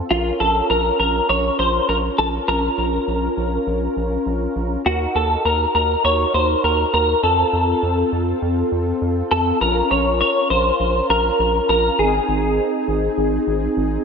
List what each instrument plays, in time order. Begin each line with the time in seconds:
0.10 analog synth bass A#1, analog polysynth C#4 F4 A#4, clean electric guitar F4
0.40 analog synth bass A#1, clean electric guitar A4
0.70 analog synth bass A#1, clean electric guitar A#4
0.99 analog synth bass A#1, clean electric guitar A#4
1.29 analog synth bass A#1, clean electric guitar C#5
1.59 analog synth bass A#1, clean electric guitar C5
1.89 analog synth bass A#1, clean electric guitar A#4
2.18 analog synth bass A#1, clean electric guitar A4
2.48 analog synth bass A#1, clean electric guitar A#4
2.78 analog synth bass A#1
3.08 analog synth bass A#1
3.37 analog synth bass A#1
3.67 analog synth bass A#1
3.96 analog synth bass A#1
4.26 analog synth bass A#1
4.56 analog synth bass A#1
4.85 analog synth bass D#2, analog polysynth D#4 F#4 A#4, clean electric guitar F#4
5.15 analog synth bass D#2, clean electric guitar A4
5.45 analog synth bass D#2, clean electric guitar A#4
5.75 analog synth bass D#2, clean electric guitar A#4
6.04 analog synth bass D#2, clean electric guitar C#5
6.34 analog synth bass D#2, clean electric guitar C5
6.64 analog synth bass D#2, clean electric guitar A#4
6.93 analog synth bass D#2, clean electric guitar A#4
7.23 analog synth bass F2, analog polysynth C4 F4 A4, clean electric guitar A4
7.53 analog synth bass F2
7.83 analog synth bass F2
8.12 analog synth bass F2
8.42 analog synth bass F2
8.72 analog synth bass F2
9.01 analog synth bass F2
9.31 analog synth bass F2, clean electric guitar A4
9.61 analog synth bass A#1, analog polysynth C#4 F4 A#4, clean electric guitar A#4
9.91 analog synth bass A#1, clean electric guitar C#5
10.21 clean electric guitar C#5
10.50 analog synth bass A#1, clean electric guitar C5
10.80 analog synth bass A#1
11.09 analog synth bass A#1, clean electric guitar A#4
11.39 analog synth bass A#1
11.69 analog synth bass A#1, clean electric guitar A#4
11.99 analog synth bass G#1, analog polysynth C4 D#4 G#4, clean electric guitar G#4
12.28 analog synth bass G#1
12.88 analog synth bass G#1
13.17 analog synth bass G#1
13.47 analog synth bass G#1
13.77 analog synth bass G#1